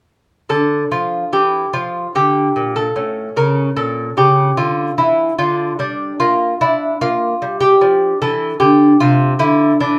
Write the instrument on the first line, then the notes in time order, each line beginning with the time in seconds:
lute
0.49 D3 D4 A4
0.91 F3 F4
1.33 E3 G4
1.73 F3 F4
2.15 D3 G4
2.56 A#2
2.76 A4
2.96 A2 C#4
3.36 C#3 A#4
3.76 A#2 A4
4.17 C#3 G4
4.57 D3 F4
4.98 E3 E4
5.38 D3 D4 F4
5.79 G3 D4
6.20 A#3 F4
6.61 D4 E4
7.01 A#3 F4
7.42 G3
7.61 G4
7.81 F3 D4
8.22 E3 A4
8.60 D3 G4
9.00 C3 F4
9.39 D3 E4
9.80 E3 D4